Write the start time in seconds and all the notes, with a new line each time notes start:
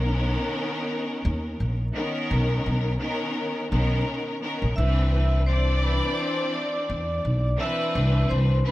Already playing: B1 D#3 B3 C#4 A#4
1.25 D#2
1.60 A#1
1.93 D#3 B3 C#4 A#4
2.31 B1
2.66 B1
2.98 D#3 B3 C#4 A#4
3.70 B1 D#3 B3 C#4 A#4
4.40 D#3 B3 C#4 A#4
4.62 A#1
4.76 C2 E3 C4 D4 B4 E5 E6
5.46 E3 C4 D4 C5 D5 C6
5.83 B4 B5
6.19 C5 C6
6.54 D5 D6
6.90 E2
7.25 B1
7.57 E3 C4 D4 B4 E5 E6
7.95 C2
8.29 C2 C5 C6
8.63 E3 C4 D4 B4
8.67 B5